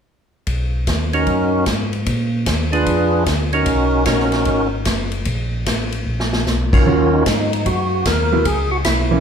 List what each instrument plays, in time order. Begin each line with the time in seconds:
0.47 tonewheel organ B1, kick, ride
0.87 tonewheel organ D#2, kick, snare, hi-hat pedal, ride
1.13 tonewheel organ C#4 D#4 F#4 A#4, ride
1.26 tonewheel organ F#2, kick, ride
1.66 tonewheel organ G#2, kick, snare, hi-hat pedal, ride
1.93 ride
2.06 tonewheel organ A#2, kick, ride
2.46 tonewheel organ D#2, kick, snare, hi-hat pedal, ride
2.72 tonewheel organ D4 F4 G#4 B4, ride
2.86 tonewheel organ F2, kick, ride
3.26 tonewheel organ D2, kick, snare, hi-hat pedal, ride
3.53 tonewheel organ C#4 D#4 F#4 A#4, ride
3.66 tonewheel organ B1, kick, ride
4.05 tonewheel organ A#1 C#4 D#4 F#4 A#4, kick, snare, hi-hat pedal, ride
4.20 snare
4.32 snare, ride
4.45 tonewheel organ G#1, kick, ride
4.85 tonewheel organ F#1, kick, snare, hi-hat pedal, ride
5.11 ride
5.25 tonewheel organ A#1, kick, ride
5.66 tonewheel organ A1, kick, snare, hi-hat pedal, ride
5.92 ride
6.06 tonewheel organ A#1
6.20 snare
6.33 snare
6.46 tonewheel organ B1, snare, hi-hat pedal
6.73 tonewheel organ D#3 C#4 F4 F#4 A#4, kick, crash
6.86 tonewheel organ D#2, hollow-body jazz guitar D#3 F#3 C#4 F4, kick
7.14 tonewheel organ D#4
7.26 tonewheel organ G#2, kick, snare, hi-hat pedal, ride
7.53 ride
7.66 tonewheel organ F#2 F#4, kick, ride
8.05 tonewheel organ D#2 A#4, kick, snare, hi-hat pedal, ride
8.33 hollow-body jazz guitar F#3 B3 E4
8.45 tonewheel organ C#2 G#4, kick, ride
8.71 tonewheel organ F#4
8.84 tonewheel organ B1 E4, kick, snare, hi-hat pedal, ride
9.11 hollow-body jazz guitar E3 A#3 C#4